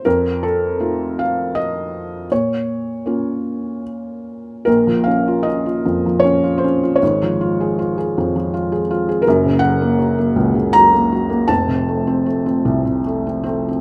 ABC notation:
X:1
M:3/4
L:1/16
Q:1/4=79
K:Fphr
V:1 name="Felt piano"
B2 =A4 f2 e4 | d8 z4 | B2 f2 e4 d2 c2 | d8- d2 z2 |
B2 g6 b4 | =a8 z2 C2 |]
V:2 name="Felt piano"
F,,4 [=A,EF]8 | B,,4 [B,DF]8 | [B,,,B,,] F, D F D F [F,,F,] F, D F D F | [A,,,A,,] F, F A F A [F,,F,] F, F A F A |
[G,,,G,,] D, G, B, G, B, [D,,D,] D, G, B, G, B, | [F,,,F,,] C, =A, C A, C [C,,C,] C, A, C A, C |]